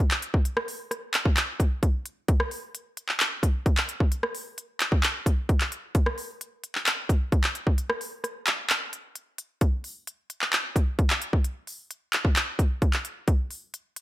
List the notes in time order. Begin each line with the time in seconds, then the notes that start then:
0.11 clap, closed hi-hat
0.22 closed hi-hat
0.34 kick
0.45 closed hi-hat
0.57 cross-stick
0.68 open hi-hat
0.91 cross-stick, closed hi-hat
1.14 clap, closed hi-hat
1.25 kick
1.37 clap, closed hi-hat
1.60 kick, closed hi-hat
1.83 kick, closed hi-hat
2.06 closed hi-hat
2.28 kick, closed hi-hat
2.40 cross-stick
2.51 open hi-hat
2.75 closed hi-hat
2.97 closed hi-hat
3.09 clap
3.20 clap, closed hi-hat
3.43 kick, closed hi-hat
3.66 kick, closed hi-hat
3.77 clap, closed hi-hat
3.89 closed hi-hat
4.00 kick
4.12 closed hi-hat
4.23 cross-stick
4.35 open hi-hat
4.58 closed hi-hat
4.80 clap, closed hi-hat
4.92 kick
5.03 clap, closed hi-hat
5.26 kick, closed hi-hat
5.49 kick, closed hi-hat
5.61 clap, closed hi-hat
5.72 closed hi-hat
5.95 kick, closed hi-hat
6.06 cross-stick
6.18 open hi-hat
6.41 closed hi-hat
6.64 closed hi-hat
6.75 clap
6.86 clap, closed hi-hat
7.09 kick, closed hi-hat
7.32 kick, closed hi-hat
7.44 clap, closed hi-hat
7.55 closed hi-hat
7.67 kick
7.78 closed hi-hat
7.90 cross-stick
8.01 open hi-hat
8.24 cross-stick, closed hi-hat
8.47 clap, closed hi-hat
8.70 clap, closed hi-hat
8.93 closed hi-hat
9.15 closed hi-hat
9.38 closed hi-hat
9.61 kick, closed hi-hat
9.84 open hi-hat
10.07 closed hi-hat
10.30 closed hi-hat
10.42 clap
10.53 clap, closed hi-hat
10.76 kick, closed hi-hat
10.99 kick, closed hi-hat
11.10 clap, closed hi-hat
11.22 closed hi-hat
11.33 kick
11.44 closed hi-hat
11.67 open hi-hat
11.91 closed hi-hat
12.13 clap, closed hi-hat
12.25 kick
12.36 clap, closed hi-hat
12.59 kick, closed hi-hat
12.82 kick, closed hi-hat
12.93 clap, closed hi-hat
13.05 closed hi-hat
13.28 kick, closed hi-hat
13.51 open hi-hat
13.74 closed hi-hat
13.96 closed hi-hat